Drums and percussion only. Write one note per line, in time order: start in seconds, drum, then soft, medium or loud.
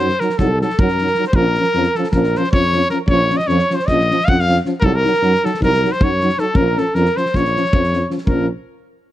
0.09 snare soft
0.20 snare soft
0.29 snare soft
0.38 kick medium
0.38 snare soft
0.61 snare soft
0.70 snare soft
0.79 kick loud
0.88 snare soft
0.98 snare soft
1.07 snare soft
1.15 snare soft
1.24 snare soft
1.33 kick medium
1.54 snare soft
1.64 snare soft
1.73 snare soft
1.83 snare soft
1.95 snare soft
2.04 snare soft
2.12 kick medium
2.12 snare soft
2.23 snare soft
2.35 snare soft
2.44 snare soft
2.53 kick medium
2.72 snare soft
2.81 snare soft
2.90 snare soft
3.08 kick medium
3.30 snare soft
3.39 snare soft
3.49 snare soft
3.59 snare soft
3.70 snare soft
3.80 snare soft
3.88 kick medium
3.88 snare soft
4.00 snare soft
4.11 snare soft
4.20 snare soft
4.28 kick medium
4.39 snare soft
4.49 snare soft
4.57 snare soft
4.65 snare soft
4.82 kick medium
5.05 snare soft
5.14 snare soft
5.23 snare soft
5.35 snare soft
5.45 snare soft
5.54 snare soft
5.62 kick medium
5.62 snare soft
5.74 snare soft
5.85 snare soft
5.92 snare soft
6.01 kick medium
6.21 snare soft
6.29 snare soft
6.38 snare soft
6.55 kick medium
6.78 snare soft
6.95 snare soft
7.05 snare soft
7.17 snare soft
7.26 snare soft
7.34 kick medium
7.34 snare soft
7.45 snare soft
7.56 snare soft
7.65 snare soft
7.73 kick medium
7.84 snare soft
7.93 snare soft
8.11 snare soft
8.18 snare soft
8.27 kick medium